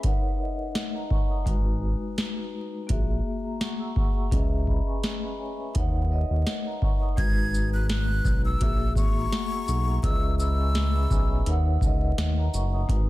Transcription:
Already playing: B4 E5
0.02 D#4 A#4 C#5 F#5, kick, closed hi-hat
0.38 D#4 A#4 C#5 D#5
0.73 C#5 F#5, snare, closed hi-hat
0.95 D#5 A#5
1.11 F#5 C#6, kick
1.30 A#5 D#6
1.44 G#1 G#3 D#4 F#4 B4, kick, closed hi-hat
2.18 snare, closed hi-hat
2.87 A#1 A#3 F#4 G#4 E5, kick, closed hi-hat
3.44 E5 A#5
3.60 F#5 C#6, snare, closed hi-hat
3.80 A#5 E6
3.96 F#5 C#6, kick
4.16 E5 A#5
4.30 C#2 C#4 G#4 B4 D#5, kick, closed hi-hat
4.39 E5
4.67 E5 B5, kick
4.87 G#5 C#6
5.03 snare, closed hi-hat
5.23 E5 B5
5.39 C#5 G#5
5.59 B4 E5
5.74 D#2 D#4 A#4 C#5 F#5, kick, closed hi-hat
6.10 D#4 A#4 C#5 D#5
6.30 D#2
6.45 C#5 F#5, snare, closed hi-hat
6.67 D#5 A#5
6.82 F#5 C#6, kick
7.02 A#5 D#6
7.16 G#1 G#3 D#4 F#4 B4 G#6, kick, closed hi-hat
7.54 shaker
7.73 F#6
7.89 F#6, snare, closed hi-hat
8.25 B1, kick, shaker
8.45 E6
8.59 A#1 A#3 F#4 G#4 E5, kick, closed hi-hat
8.95 G#1 C#6, kick, shaker
9.17 E5 A#5
9.31 F#5 C#6, snare, closed hi-hat
9.52 A#5 E6
9.67 B1 F#5 C#6, shaker
9.88 E5 A#5
10.03 C#2 C#4 G#4 B4 D#5 E6, kick, closed hi-hat
10.12 E5
10.39 E5 B5 E6, shaker
10.59 G#5 C#6
10.75 snare, closed hi-hat
10.95 E5 B5
11.10 B1 C#5 G#5, kick, shaker
11.31 B4 E5
11.46 D#2 D#4 A#4 C#5 F#5, closed hi-hat
11.81 C#2 D#4 A#4 C#5 D#5, kick, shaker
12.17 D#2 F#5, snare, closed hi-hat
12.38 D#5 A#5
12.53 F#1 F#5 C#6, shaker
12.74 A#5 D#6
12.88 G#1 G#3 D#4 F#4 B4, kick, closed hi-hat

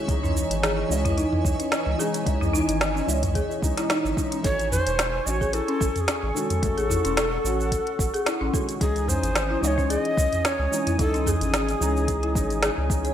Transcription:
Already playing: E4 F#4 C#5
0.06 C#2 E3 G#3 C#4 D#5 G#5, kick, closed hi-hat, shaker
0.10 D#4
0.23 C#4, mid tom, shaker
0.37 shaker
0.51 G#1, closed hi-hat, shaker
0.63 G#4, snare, closed hi-hat, shaker
0.88 C#2 E3 G#3 C#4, shaker
0.92 D#5
1.05 E4, kick, closed hi-hat, mid tom, shaker
1.17 D#4, closed hi-hat, shaker
1.33 mid tom
1.45 C#2, kick, shaker
1.60 C#4, closed hi-hat, shaker
1.72 snare, closed hi-hat, shaker
1.86 C#2
1.98 E3 G#3 C#4 D#4 G#4, shaker
2.14 closed hi-hat, shaker
2.24 C#2 E3 G#3 C#4, kick, closed hi-hat, shaker
2.28 D#5
2.41 E4, mid tom, shaker
2.53 D#4, shaker
2.68 G#1, closed hi-hat, shaker
2.81 snare, closed hi-hat, shaker
2.96 C#4, shaker
3.06 C#2 E3 G#3 C#4 D#5, shaker
3.23 kick, closed hi-hat, mid tom, shaker
3.35 G#4, kick, closed hi-hat, shaker
3.51 shaker
3.62 C#2 E3 G#3 C#4 D#4, kick, shaker
3.77 E4, snare, closed hi-hat, shaker
3.90 D#4, snare, closed hi-hat, shaker
4.05 G#1, shaker
4.16 E3 G#3 C#4 D#4, kick, shaker
4.32 C#4, closed hi-hat, shaker
4.42 A1 D#3 C#4 A4 C#5 G#5 C#6, kick, closed hi-hat, shaker
4.46 F#4
4.59 closed hi-hat, shaker
4.72 C5, mid tom, shaker
4.87 E1, closed hi-hat, shaker
4.99 snare, closed hi-hat, shaker
5.26 A1 C#4 F#4 D#5, shaker
5.30 C#5
5.41 G#4, kick, shaker
5.53 E4 A4, closed hi-hat, shaker
5.68 C#4, closed hi-hat
5.81 A1 A4, kick, shaker
5.96 A4, closed hi-hat, mid tom, shaker
6.00 G#4
6.08 snare, closed hi-hat, shaker
6.23 A1
6.35 D#3 G#3 C#4 F#4 A4, shaker
6.50 closed hi-hat, mid tom, shaker
6.62 A1 A3 C#4 F#4 F#5, kick, closed hi-hat, shaker
6.77 G#4, closed hi-hat, shaker
6.90 E4, mid tom, shaker
7.05 E1 C#4, closed hi-hat, shaker
7.17 A4, snare, closed hi-hat, shaker
7.44 A1 C#4 F#4, shaker
7.60 shaker
7.72 kick, closed hi-hat, shaker
7.87 closed hi-hat
7.99 A1, kick, shaker
8.14 G#4, closed hi-hat, shaker
8.26 E4, snare, closed hi-hat, shaker
8.41 A1 C#4
8.52 D#3 G#3 C#4 F#4 A4, kick, shaker
8.69 closed hi-hat, shaker
8.79 C#2 E3 G#3 C#4 D#4 G#4 G#5 D#6, kick, closed hi-hat, shaker
8.96 closed hi-hat, shaker
9.08 C5, mid tom, shaker
9.23 G#1, closed hi-hat, shaker
9.36 snare, closed hi-hat, shaker
9.50 E4
9.60 C#2 E3 G#3 C#4 D#4 D#5, shaker
9.68 C#5
9.78 C#4, kick, shaker
9.90 G#4 D#5, closed hi-hat, shaker
10.05 closed hi-hat
10.17 C#2, kick, shaker
10.33 closed hi-hat, mid tom, shaker
10.45 C#5, snare, closed hi-hat, shaker
10.59 C#2
10.71 E3 G#3 C#4 D#4, shaker
10.87 E4, closed hi-hat, mid tom, shaker
10.97 C#2 E3 G#3 C#4 D#4 A4 D#5, kick, closed hi-hat, shaker
11.14 C#4, closed hi-hat, shaker
11.26 G#4 A4, mid tom, shaker
11.41 G#1, closed hi-hat, shaker
11.54 snare, closed hi-hat, shaker
11.69 closed hi-hat, shaker
11.80 C#2 E3 G#3 C#4 D#4, shaker
11.97 shaker
12.08 kick, closed hi-hat, shaker
12.23 E4, closed hi-hat
12.35 G#1 E3 G#3 C#4 D#4, kick, shaker
12.50 closed hi-hat, shaker
12.63 G#4, snare, closed hi-hat, shaker
12.78 C#2
12.89 E3 G#3 C#4 D#4, kick, shaker
13.05 C#5, closed hi-hat, shaker

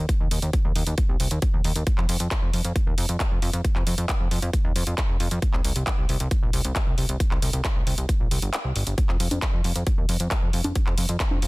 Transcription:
0.09 kick, closed hi-hat
0.20 D#2
0.31 D#2, open hi-hat
0.42 D#2, closed hi-hat
0.53 kick, closed hi-hat
0.65 D#2
0.76 D#2, open hi-hat
0.87 D#2, closed hi-hat
0.98 kick, closed hi-hat
1.09 C2
1.20 C2, open hi-hat
1.31 D#2, closed hi-hat
1.42 kick, closed hi-hat
1.54 D#2
1.64 D#2, open hi-hat
1.76 D#2, closed hi-hat
1.87 kick, closed hi-hat
1.98 F2, clap
2.09 F2, open hi-hat
2.20 F2, closed hi-hat
2.31 kick, clap, closed hi-hat
2.42 F2
2.53 F2, open hi-hat
2.65 F2, closed hi-hat
2.76 kick, closed hi-hat
2.87 D#2
2.98 F2, open hi-hat
3.09 F2, closed hi-hat
3.20 kick, clap, closed hi-hat
3.31 F2
3.42 F2, open hi-hat
3.53 F2, closed hi-hat
3.65 kick, closed hi-hat
3.76 F2, clap
3.87 F2, open hi-hat
3.98 F2, closed hi-hat
4.09 kick, clap, closed hi-hat
4.20 F2
4.31 F2, open hi-hat
4.42 F2, closed hi-hat
4.53 kick, closed hi-hat
4.65 D#2
4.76 F2, open hi-hat
4.87 F2, closed hi-hat
4.98 kick, clap, closed hi-hat
5.09 F2
5.20 F2, open hi-hat
5.31 F2, closed hi-hat
5.42 kick, closed hi-hat
5.53 C2, clap
5.65 C2, open hi-hat
5.76 C2, closed hi-hat
5.87 kick, clap, closed hi-hat
5.98 C2
6.09 C2, open hi-hat
6.20 C2, closed hi-hat
6.31 kick, closed hi-hat
6.43 A#1
6.53 C2, open hi-hat
6.65 C2, closed hi-hat
6.76 kick, clap, closed hi-hat
6.87 C2
6.98 C2, open hi-hat
7.09 C2, closed hi-hat
7.20 kick, closed hi-hat
7.31 C2, clap
7.42 C2, open hi-hat
7.53 C2, closed hi-hat
7.65 kick, clap, closed hi-hat
7.76 C2
7.87 C2, open hi-hat
7.98 C2, closed hi-hat
8.09 kick, closed hi-hat
8.20 A#1
8.31 C2, open hi-hat
8.42 G1, closed hi-hat
8.53 clap, closed hi-hat
8.65 C2
8.76 G1, open hi-hat
8.87 G1, closed hi-hat
8.98 kick, closed hi-hat
9.09 F2, clap
9.20 F2, open hi-hat
9.31 F2, closed hi-hat, high conga
9.42 kick, clap, closed hi-hat
9.54 F2
9.64 F2, open hi-hat
9.76 F2, closed hi-hat
9.87 kick, closed hi-hat
9.98 D#2
10.09 F2, open hi-hat
10.20 F2, closed hi-hat
10.31 kick, clap, closed hi-hat
10.42 F2
10.53 F2, open hi-hat
10.64 F2, closed hi-hat, high conga
10.75 kick, closed hi-hat
10.87 F2, clap
10.98 F2, open hi-hat
11.09 F2, closed hi-hat
11.20 kick, clap, closed hi-hat
11.31 F2, high conga
11.42 F2, open hi-hat

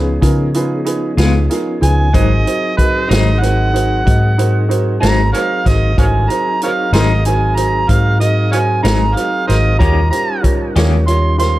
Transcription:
Already playing: C#2 F3 B3 C#4 D#4 F4 G#4 B4
0.22 C#3 D#4 F4 G#4 A#4, kick, closed hi-hat
0.54 D#4 F4 G#4 B4, closed hi-hat
0.85 D#4 F4 G#4 B4, closed hi-hat
1.17 C#2 C#3 G#3 B3 D#4 F4 G#4 B4, snare, closed hi-hat
1.50 D#4 F4 G#4 A#4, closed hi-hat
1.81 C#2 D#4 F4 G#4 B4 G#5, closed hi-hat
2.13 G#1 G#2 F#3 C4 D#4 F#4 G#4 A#4 C5 D#5, kick, closed hi-hat
2.46 D#4 F#4 A#4 C5, closed hi-hat
2.77 D#4 F#4 A#4 B4 D#5, kick, closed hi-hat
3.08 G#1 G#2 F#3 C4 D#4 F#4 A#4 C5 D#5, closed hi-hat
3.13 snare
3.39 D#4 F#4 A#4 C5 F#5, closed hi-hat
3.73 D#4 F#4 A#4 C5, closed hi-hat
4.05 G#2 D#4 F#4 A#4 D#5, kick, closed hi-hat
4.38 D#4 F#4 A#4 C5, closed hi-hat
4.69 D#4 F#4 A#4 C5, closed hi-hat
5.01 G#1 G#2 F#3 C4 D#4 F#4 A#4 C5 A#5, snare, closed hi-hat
5.33 D#4 F#4 A#4 C5 C#5 F5, closed hi-hat
5.65 G#1 D#4 F#4 A#4 C5 D#5, kick, snare, closed hi-hat
5.97 G#1 G3 C#4 D#4 E4 F#4 A4 A#4 C5 C#5 F5 G#5, kick, closed hi-hat
6.29 F#3 C4 D#4 F#4 G#4 A#4 C5 A#5, closed hi-hat
6.62 D#4 F#4 A#4 C5 C#5 F5, closed hi-hat
6.92 G#1 G#2 F#3 C4 D#4 F#4 A#4 C5 D#5, snare, closed hi-hat
7.25 D#4 F#4 A#4 C5 G#5, closed hi-hat
7.55 D#4 F#4 A#4 C5 A#5, closed hi-hat
7.88 G#2 D#4 F#4 A#4 C5 F5, kick, closed hi-hat
8.19 D#4 F#4 A#4 D#5, closed hi-hat
8.51 D#4 F#4 A#4 C5 C#5 F5 G#5, closed hi-hat
8.83 G#1 G#2 F#3 C4 D#4 F#4 A#4 C5 A#5, snare, closed hi-hat
9.15 D#4 F#4 A#4 C5 F5, closed hi-hat
9.47 G#1 D#4 F#4 A#4 C5 D#5, snare, closed hi-hat
9.78 D#2 D#3 G3 A#3 C#4 D#4 F4 G4 A#4 C#5 A#5, kick, closed hi-hat
10.11 F4 G4 A#4 C5 A#5, closed hi-hat
10.41 F4 G4 A#4 C#5, kick, closed hi-hat
10.75 D#2 D#3 A#3 C#4 F4 G4 A#4 C#5, snare, closed hi-hat
11.07 F4 G4 A#4 C#5 C6, closed hi-hat
11.38 F4 G4 A#4 C5 C6, snare, closed hi-hat

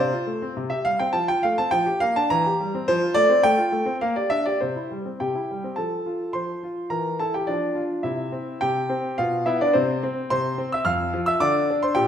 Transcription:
Already playing: C3 C5
0.12 F4
0.27 A3
0.42 C4
0.57 C3
0.70 G4 E5
0.85 G3 F5
0.99 C4 G5
1.13 F3 A5
1.28 F4 G5
1.43 A3 F5
1.58 C4 A5
1.71 F3 G5
1.86 G4
2.00 A#3 F5
2.16 D4 A5
2.30 E3 A#5
2.46 G4
2.60 G3
2.75 C4
2.88 F3 C5
3.02 F4
3.14 A3 D5
3.30 C4
3.43 A3 G5
3.57 F4
3.72 A3
3.86 C4
4.01 A#3 F5
4.16 G4 D5
4.30 D4 E5
4.46 G4 D5
4.61 C3 C5
4.76 E4
4.91 G3
5.06 C4
5.20 C3 G4 G5
5.35 E4
5.51 G3
5.64 C4
5.76 F3 A4 A5
6.06 F4
6.33 F3 C5 C6
6.63 F4
6.90 E3 A#4 A#5
7.19 E4 A4 A5
7.34 G4 G5
7.47 F3 D4 D5
7.75 F4
8.03 C3 E4 E5
8.32 C4
8.61 C3 G4 G5
8.89 C4
9.18 B2 F4 F5
9.46 B3 E4 E5
9.61 D4 D5
9.73 C3 C4 C5
10.03 C4
10.30 C3 C5 C6
10.58 C4
10.72 E5 E6
10.85 F2 F5 F6
11.14 F3
11.26 E5 E6
11.40 D3 D5 D6
11.70 D4
11.83 C5 C6
11.95 A#2 G4 G5

